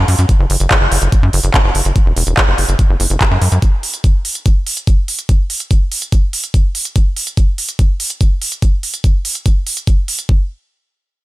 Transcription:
0.08 F#2, open hi-hat
0.19 F#2, closed hi-hat
0.29 kick, closed hi-hat
0.40 F#1
0.50 F#1, open hi-hat
0.60 F#1, closed hi-hat
0.71 kick, clap, closed hi-hat
0.81 F#1
0.92 F#1, open hi-hat
1.02 F#1, closed hi-hat
1.12 kick, closed hi-hat
1.23 F#2
1.33 F#1, open hi-hat
1.44 F#1, closed hi-hat
1.54 kick, clap, closed hi-hat
1.64 F#1
1.75 F#1, open hi-hat
1.85 F#1, closed hi-hat
1.96 kick, closed hi-hat
2.06 E1
2.17 E1, open hi-hat
2.27 E1, closed hi-hat
2.37 kick, clap, closed hi-hat
2.48 F#1
2.58 F#1, open hi-hat
2.69 F#1, closed hi-hat
2.79 kick, closed hi-hat
2.89 F#1
3.00 F#1, open hi-hat
3.10 F#1, closed hi-hat
3.21 kick, clap, closed hi-hat
3.31 F#2
3.42 F#2, open hi-hat
3.52 F#2, closed hi-hat
3.62 kick, closed hi-hat
3.83 open hi-hat
3.94 closed hi-hat
4.04 kick, closed hi-hat
4.25 open hi-hat
4.35 closed hi-hat
4.46 kick, closed hi-hat
4.67 open hi-hat
4.77 closed hi-hat
4.87 kick, closed hi-hat
5.08 open hi-hat
5.19 closed hi-hat
5.29 kick, closed hi-hat
5.50 open hi-hat
5.60 closed hi-hat
5.71 kick, closed hi-hat
5.92 open hi-hat
6.02 closed hi-hat
6.12 kick, closed hi-hat
6.33 open hi-hat
6.44 closed hi-hat
6.54 kick, closed hi-hat
6.75 open hi-hat
6.85 closed hi-hat
6.96 kick, closed hi-hat
7.17 open hi-hat
7.27 closed hi-hat
7.37 kick, closed hi-hat
7.58 open hi-hat
7.69 closed hi-hat
7.79 kick, closed hi-hat
8.00 open hi-hat
8.10 closed hi-hat
8.21 kick, closed hi-hat
8.42 open hi-hat
8.52 closed hi-hat
8.62 kick, closed hi-hat
8.83 open hi-hat
8.94 closed hi-hat
9.04 kick, closed hi-hat
9.25 open hi-hat
9.35 closed hi-hat
9.46 kick, closed hi-hat
9.67 open hi-hat
9.77 closed hi-hat
9.87 kick, closed hi-hat
10.08 open hi-hat
10.19 closed hi-hat
10.29 kick

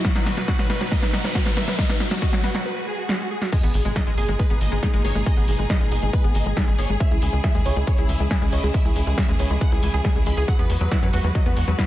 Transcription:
Already playing: B2 F#3 F#4, riser
0.05 D#3 F#3 D#4 F#5, kick, snare, closed hi-hat
0.15 D#4 B4, snare, closed hi-hat
0.26 B4, snare, open hi-hat
0.37 F#3 B4, snare, closed hi-hat
0.48 F#4 F#5, kick, snare, closed hi-hat
0.59 F#3 B4, snare, closed hi-hat
0.70 B4, snare, open hi-hat
0.81 F#3 B4, snare, closed hi-hat
0.92 F#3 D#5, kick, snare, closed hi-hat
1.02 D#4 B4, snare, closed hi-hat
1.13 F#5, snare, open hi-hat
1.24 F#3 B4, snare, closed hi-hat
1.35 F#4 B4, kick, snare, closed hi-hat
1.46 F#3 B4, snare, closed hi-hat
1.57 B4 E5, snare, open hi-hat
1.68 F#3 B4, snare, closed hi-hat
1.79 F#3 D#5, kick, snare, closed hi-hat
1.89 D#4 F#4, snare, closed hi-hat
2.00 F#4, snare, open hi-hat
2.11 F#3 F#4, snare, closed hi-hat
2.22 F#4 D#5, kick, snare, closed hi-hat
2.33 F#3 F#4, snare, closed hi-hat
2.44 F#4 B4, snare, open hi-hat
2.55 F#3 F#4, snare, closed hi-hat
2.65 B4, swell
2.76 F#4
2.87 G#4
2.98 F#4
3.09 F#4, snare
3.20 F#4
3.31 G#4
3.42 F#4, snare
3.52 B2 G#3 A#3 D#4 G#4 D#5, kick, closed hi-hat, crash, impact
3.63 G#1 B3 G#4, closed hi-hat
3.74 G#1 G#4, open hi-hat
3.85 G#1 G#3 G#4, closed hi-hat
3.96 D#4 D#5, kick, snare, closed hi-hat
4.07 A#1 G#3 G#4, closed hi-hat
4.18 G#1 G#4, open hi-hat
4.28 G#1 G#3 G#4, closed hi-hat
4.39 G#3 B4, kick, closed hi-hat
4.50 G#1 B3 G#4, closed hi-hat
4.61 G#1 D#5, open hi-hat
4.72 G#1 G#3 G#4, closed hi-hat
4.83 D#4 G#4, kick, snare, closed hi-hat
4.94 G#1 G#3 G#4, closed hi-hat
5.04 G#1 G#4 C#5, open hi-hat
5.15 G#1 G#3 G#4, closed hi-hat
5.26 G#3 D#5, kick, closed hi-hat
5.37 G#1 B3 G#4, closed hi-hat
5.48 G#1 G#4, open hi-hat
5.59 G#1 G#3 G#4, closed hi-hat
5.70 D#4 D#5, kick, snare, closed hi-hat
5.81 A#1 G#3 G#4, closed hi-hat
5.92 G#1 G#4, open hi-hat
6.02 G#1 G#3 G#4, closed hi-hat
6.13 G#3 B4, kick, closed hi-hat
6.24 G#1 B3 G#4, closed hi-hat
6.35 G#1 D#5, open hi-hat
6.46 G#1 G#3 G#4, closed hi-hat
6.57 D#4 G#4, kick, snare, closed hi-hat
6.68 G#1 G#3 G#4, closed hi-hat
6.79 G#1 G#4 C#5, open hi-hat
6.89 G#1 G#3 G#4, closed hi-hat
7.00 C#3 E3 G#3 E4 E5, kick, closed hi-hat
7.11 C#2 E4 G#4, closed hi-hat
7.22 C#2 G#4, open hi-hat
7.33 C#2 G#3 G#4, closed hi-hat
7.44 G#4 E5, kick, snare, closed hi-hat
7.55 D#2 G#3 G#4, closed hi-hat
7.66 C#2 G#4 C#5, open hi-hat
7.76 C#2 G#3 G#4, closed hi-hat
7.87 G#3 C#5, kick, closed hi-hat
7.98 C#2 E4 G#4, closed hi-hat
8.09 C#2 E5, open hi-hat
8.20 C#2 G#3 G#4, closed hi-hat
8.31 G#4, kick, snare, closed hi-hat
8.42 C#2 G#3 G#4, closed hi-hat
8.52 C#2 C#5 D#5, open hi-hat
8.63 C#2 G#3 G#4, closed hi-hat
8.74 G#3 E5, kick, closed hi-hat
8.85 C#2 E4 G#4, closed hi-hat
8.96 C#2 G#4, open hi-hat
9.07 C#2 G#3 G#4, closed hi-hat
9.18 G#4 E5, kick, snare, closed hi-hat
9.29 D#2 G#3 G#4, closed hi-hat
9.39 C#2 G#4 C#5, open hi-hat
9.50 C#2 G#3 G#4, closed hi-hat
9.61 G#3 F#5, kick, closed hi-hat
9.72 C#2 E4 G#4, closed hi-hat
9.83 C#2 G#5, open hi-hat
9.94 C#2 G#4, closed hi-hat
10.05 G#3 G#4, kick, snare, closed hi-hat
10.15 C#2 G#3 G#4, closed hi-hat
10.26 C#2 G#3 B5, open hi-hat
10.37 C#2 G#4, closed hi-hat
10.48 F#3 B3 F#4 F#5, kick, closed hi-hat
10.59 E2 B3 B4, closed hi-hat
10.70 E2 B4, open hi-hat
10.81 E2 F#3 B4, closed hi-hat
10.91 E4 F#5, kick, snare, closed hi-hat
11.02 F#2 F#3 B4, closed hi-hat
11.13 E2 F#4 B4, open hi-hat
11.24 E2 F#3 B4, closed hi-hat
11.35 F#3 D#5, kick, closed hi-hat
11.46 E2 B3 B4, closed hi-hat
11.56 E2 F#5, open hi-hat
11.67 E2 F#3 B4, closed hi-hat
11.78 E4 B4, kick, snare, closed hi-hat

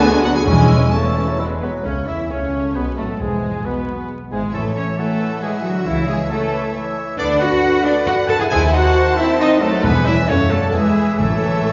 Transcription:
Already playing: D2 D3 B3 D4 F#4 B4 F#6
0.00 G#3 G#4 G#5
0.23 F#3 F#4 F#5
0.35 G#3 G#4 G#5
0.46 E1 E2 E3 G#3 C#4 E4 G#4 C#5 G#5 E6
0.92 C#3 E3 A3 C#4 E4 A4 C#5 A5 E6
1.17 E3
1.29 F#3
1.38 E3 G#3 B3 E4 B4 E6
1.61 F#3 G#3 B3 B4
1.84 C#2 C#3 A3 C#4 C#5
2.06 E2 E3 C#4 E4 E5
2.29 C#2 C#3 A3 C#4 C#5
2.75 B1 B2 G#3 B3 B4
2.97 A1 A2 F#3 A3 A4
3.19 G#1 E2 G#2 E3 G#3 G#4
3.64 B1 B2 G#3 B3 B4
4.30 G#1 G#2 E3 G#3 G#4
4.52 A1 A2 E3 A3 A4 C#5 E5
4.65 E5
4.76 A3 C#4 C#5
4.88 E5
4.98 E3 F#3 A3 A4 C#5 F#5
5.10 E5
5.20 E3 C#5
5.32 E5
5.41 E3 G#3 G#4 C#5 E5
5.54 E5
5.63 D3 F#3 F#4 C#5
5.76 E5
5.86 C#2 C#3 E3 E4 C#5 E5
5.99 E5
6.08 E3 G#3 G#4 C#5
6.20 E5
6.30 E3 F#3 A3 A4 C#5
6.42 E5
6.53 E3 C#5
6.65 E5
6.74 E3 C#5 E5
6.86 E5
6.97 C#5
7.08 E5
7.17 D2 D3 B3 D4 B4 D5 F#5
7.31 F#5
7.40 D4 F#4 F#5
7.53 F#5
7.65 F#5
7.75 F#5
7.84 B3 D4 D5 F#5
7.97 F#5
8.06 D4 F#4 F#5
8.20 F#5
8.28 F#4 A4 F#5 A5
8.39 E4 G#4 F#5 G#5
8.49 D#2 D#3 E4 G#4 C5 F#5 G#5 A5
8.64 F#5
8.73 D#4 F#4 F#5
8.85 F#5
8.96 F#5
9.08 F#5
9.17 C4 E4 E5 F#5
9.29 F#5
9.39 C4 D#4 D#5 F#5
9.52 F#5
9.60 F#3 A3 A4 F#5
9.74 F#5
9.83 E2 E3 G#3 B3 B4 E5 G#5
10.05 C#4 E4 D5 E5
10.27 F#2 C#3 A3 C#4 A4 C#5 F#5 A5
10.50 F#3 A3 A4 D5
10.72 E2 E3 G#3 G#4 B4 E5
11.18 A1 A2 E3 A3 A4 C#5 E5

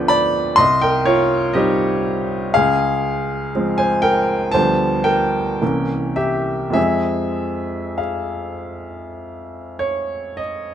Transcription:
Already playing: D2 F3 B3 D4 B4 G5
0.08 D5 B5
0.56 C2 D#5 C6
0.82 A#4 G5
1.05 F4 C#5
1.53 G3 C4 D#4 G4 D#5
2.54 C#2 G#4 F5
3.55 F3 G#3 C4
3.78 C5 G#5
4.02 A#4 G5
4.52 D2 F3 G3 C5 A5
4.56 B3
5.04 A#4 G5
5.61 C2 E3 A#3 C#4
6.16 G4 E5
6.70 F2 F3 G#3 C4 E5
6.74 G#4
7.98 G#4 F5
9.79 C#5
10.37 D#5

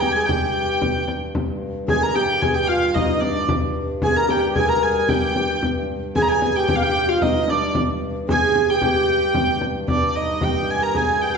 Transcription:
Already playing: G2
0.00 G4 G5, frame drum
0.12 G#4 G#5
0.26 G4 G5, frame drum
0.82 frame drum
1.08 frame drum
1.35 G2, frame drum
1.87 G#4 G#5, frame drum
2.01 A#4 A#5
2.14 G4 G5, frame drum
2.42 G#4 G#5, frame drum
2.54 G4 G5
2.68 F4 F5
2.94 D#4 D#5, frame drum
3.20 D4 D5, frame drum
3.49 frame drum
4.02 G#4 G#5, frame drum
4.16 A#4 A#5
4.29 G4 G5, frame drum
4.55 G#4 G#5, frame drum
4.67 A#4 A#5
4.83 G#4 G#5, frame drum
5.09 G4 G5, frame drum
5.36 G4, frame drum
5.62 G2, frame drum
6.16 G#4 G#5, frame drum
6.22 A#5
6.28 G#4 G#5
6.42 frame drum
6.56 G4 G5
6.67 G4 G5, frame drum
6.75 F5
6.82 G4 G5
7.08 F4 F5
7.22 D#4 D#5, frame drum
7.48 D4 D5, frame drum
7.75 frame drum
8.28 G#4 G#5, frame drum
8.56 frame drum
8.68 G4 G5
8.82 G4 G5, frame drum
9.08 frame drum
9.35 frame drum
9.61 frame drum
9.88 G2 D4 D5, frame drum
10.15 D#4 D#5
10.41 G4 G5, frame drum
10.68 G#5, frame drum
10.82 A#4 A#5
10.95 G#4 G#5, frame drum
11.22 G5

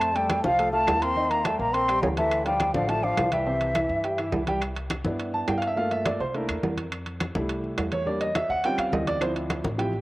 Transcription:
Already playing: F2 A3 C4 C5 A5 C6
0.01 high conga, high timbale, claves
0.15 G3 A3 A4 G5 A5, high conga, high timbale
0.30 high conga, high timbale, low timbale, claves
0.43 C2 F3 F4 F5, high conga
0.59 A3 A4 A5, high conga, high timbale
0.72 A3 F4 F5 A5 F6, high conga
0.87 D#2, high conga, high timbale, low timbale, claves
1.01 A#3 C4 A#4 A#5 C6, high timbale
1.16 D#3 D#4 D#5, high conga
1.30 A#3 A#5, high conga, high timbale
1.44 G3 A3 G4 G5 A5, high conga, high timbale, low timbale, claves
1.59 A#1 A#3 A#5, high conga
1.73 A#3 C4 A#4 A#5 C6, high conga, high timbale
1.88 G3 G4 G5, high conga, high timbale, claves
2.02 D2 C#3 C#5, high conga, low timbale
2.17 E3 A3 A4 E5 A5, high conga, high timbale
2.31 high conga, high timbale, claves
2.45 F3 G3 F4 F5 G5, high conga, high timbale
2.60 high conga, high timbale, low timbale, claves
2.74 A1 D3 F3 D4 D5 F5, high conga
2.88 F3 A3 F4 F5 A5, high conga, high timbale
3.03 F3 D4 D5 F5 D6, high conga
3.17 C2, high conga, high timbale, low timbale, claves
3.32 E3 G3 G4 E5 G5, high conga, high timbale
3.46 C3 C4 C5, high conga
3.61 high conga, high timbale
3.75 E3 E4 E5, high conga, high timbale, low timbale, claves
3.89 G2, high conga
4.04 G3 G4 G5, high conga, high timbale
4.18 E3 E4 E5, high conga, high timbale, claves
4.32 C2, high conga, low timbale
4.47 G3 G4 G5, high conga, high timbale
4.61 high conga, high timbale, claves
4.75 high conga, high timbale
4.90 high conga, high timbale, low timbale, claves
5.05 G2 B3 D4 E4, high conga
5.19 high conga, high timbale
5.34 A5, high conga
5.48 G2 G5, high conga, high timbale, low timbale, claves
5.58 F5
5.62 high timbale
5.67 E5
5.76 A3 A#3 F4 F5, high conga
5.91 E5, high conga, high timbale
6.06 D5, high conga, high timbale, low timbale, claves
6.20 C2 C5, high conga
6.34 A3 A#3 D4 E4 A#4, high conga, high timbale
6.49 E2, high conga, high timbale, claves
6.63 F2, high conga, low timbale
6.77 high conga, high timbale
6.92 high conga, high timbale, claves
7.06 high conga, high timbale
7.20 high conga, high timbale, low timbale, claves
7.35 C2 G3 A3 E4, high conga
7.49 high conga, high timbale
7.64 high conga
7.78 E2, high conga, high timbale, low timbale, claves
7.92 C#5, high conga, high timbale
8.06 G3 A#3 D4 D5, high conga
8.21 D#5, high conga, high timbale
8.35 E5, high conga, high timbale, low timbale, claves
8.49 D#2 F#5, high conga
8.64 G3 C4 C#4 F4 G5, high conga, high timbale
8.78 D#2 F5, high conga, high timbale, claves
8.92 D2 D#5, high conga, low timbale
9.07 D5, high conga, high timbale
9.21 F3 C4 E4 C5, high conga, high timbale, claves
9.36 high conga, high timbale
9.50 high conga, high timbale, low timbale, claves
9.64 A1, high conga
9.78 F3 C4 E4 G4 G5, high conga, high timbale
9.93 high conga

